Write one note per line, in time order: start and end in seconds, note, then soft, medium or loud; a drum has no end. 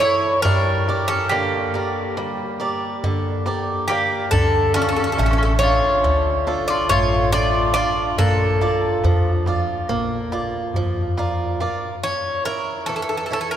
0.00 0.36 E4 medium
0.00 0.41 E4 medium
0.00 0.36 A4 soft
0.00 0.41 C#5 medium
0.00 0.36 C#5 medium
0.00 darbuka tek medium
0.24 darbuka tek soft
0.42 0.88 G3 medium
0.42 1.05 D4 medium
0.42 1.07 A#4 loud
0.42 darbuka dum loud
0.88 1.57 G4 medium
0.88 1.58 A#4 soft
0.88 1.58 D5 medium
0.88 darbuka tek medium
1.08 1.29 C#4 medium
1.08 1.31 A4 medium
1.08 darbuka tek soft
1.29 2.15 D3 medium
1.29 3.86 A#3 medium
1.29 3.86 G4 medium
1.29 darbuka tek medium
1.74 2.43 G4 medium
1.74 2.43 A#4 soft
1.74 2.44 D5 medium
1.74 darbuka tek medium
2.17 3.01 G3 medium
2.17 darbuka tek medium
2.40 darbuka tek soft
2.60 3.29 G4 soft
2.60 3.29 A#4 soft
2.60 3.30 D5 medium
3.04 3.87 D3 medium
3.04 darbuka dum medium
3.46 3.88 G4 medium
3.46 3.89 A#4 soft
3.46 3.89 D5 medium
3.46 darbuka tek medium
3.88 4.30 A#3 medium
3.88 4.29 G4 medium
3.88 4.24 G4 medium
3.88 4.24 A#4 soft
3.88 4.24 D5 soft
3.88 darbuka tek medium
4.11 darbuka tek soft
4.31 4.93 D2 loud
4.31 5.16 D3 medium
4.31 4.73 D4 medium
4.31 4.72 A4 medium
4.31 darbuka dum loud
4.74 4.82 C#4 medium
4.74 5.44 D4 medium
4.74 5.45 F4 medium
4.74 4.80 A4 medium
4.74 5.45 A4 medium
4.74 darbuka tek medium
4.82 4.91 C#4 soft
4.82 4.87 A4 medium
4.89 4.98 C#4 medium
4.89 4.95 A4 medium
4.96 5.06 C#4 soft
4.96 5.03 A4 medium
4.96 darbuka tek soft
5.04 5.14 C#4 soft
5.04 5.11 A4 medium
5.12 5.22 C#4 soft
5.12 5.18 A4 medium
5.18 5.79 A1 loud
5.18 6.02 A3 medium
5.18 5.25 A4 medium
5.18 darbuka tek medium
5.23 5.29 C#4 medium
5.23 5.32 A4 medium
5.31 5.37 C#4 medium
5.31 5.41 A4 medium
5.38 5.44 C#4 medium
5.43 5.52 C#4 medium
5.43 5.51 A4 medium
5.59 6.29 D4 soft
5.59 6.30 F4 medium
5.59 6.30 A4 medium
5.59 6.67 C#5 loud
5.59 darbuka tek medium
5.63 6.66 F4 medium
6.04 6.64 D2 medium
6.04 6.88 D3 medium
6.04 darbuka tek medium
6.26 darbuka tek soft
6.47 7.16 D4 soft
6.47 7.16 F4 soft
6.47 7.16 A4 medium
6.47 darbuka tek medium
6.68 6.89 F4 medium
6.68 6.88 D5 medium
6.89 7.80 A1 medium
6.89 7.73 A3 medium
6.89 7.31 F4 medium
6.89 7.30 C#5 loud
6.89 darbuka dum medium
7.32 7.74 D4 medium
7.32 7.73 F4 medium
7.32 7.75 F4 soft
7.32 7.75 A4 medium
7.32 7.73 D5 loud
7.32 darbuka tek medium
7.74 8.10 D4 soft
7.74 8.10 F4 soft
7.74 8.16 F4 medium
7.74 8.10 A4 soft
7.74 8.18 D5 loud
7.74 darbuka tek medium
7.98 darbuka tek soft
8.18 8.79 A#1 medium
8.18 9.02 A#3 medium
8.18 11.14 D4 medium
8.18 11.14 A4 medium
8.18 darbuka dum loud
8.40 darbuka tek soft
8.61 9.30 F4 medium
8.61 9.30 D5 medium
8.61 darbuka tek medium
9.04 9.64 F2 medium
9.04 9.87 F3 medium
9.04 darbuka tek medium
9.25 darbuka tek soft
9.46 10.16 F4 medium
9.46 10.16 D5 medium
9.46 darbuka tek medium
9.68 darbuka tek soft
9.89 10.50 A#1 medium
9.89 10.72 A#3 medium
9.89 darbuka tek medium
10.32 11.01 F4 soft
10.32 11.01 D5 medium
10.32 darbuka tek medium
10.74 11.66 F2 medium
10.74 11.59 F3 medium
10.74 darbuka dum medium
11.17 11.59 F4 medium
11.17 11.60 A#4 soft
11.17 11.60 D5 medium
11.17 darbuka tek medium
11.60 11.95 F4 soft
11.60 11.95 A#4 soft
11.60 11.95 D5 soft
11.60 darbuka tek medium
11.83 darbuka tek soft
12.04 12.87 C#4 medium
12.04 12.45 C#5 medium
12.45 13.15 E4 soft
12.45 12.86 A#4 medium
12.45 13.15 C#5 soft
12.86 13.57 E3 medium
12.86 12.95 A4 medium
12.96 13.01 A4 medium
13.02 13.08 A4 medium
13.09 13.16 A4 medium
13.17 13.25 A4 medium
13.26 13.32 A4 soft
13.30 13.57 E4 soft
13.30 13.57 A4 soft
13.30 13.40 A4 medium
13.30 13.57 C#5 soft
13.41 13.48 A4 medium
13.51 13.57 A#4 medium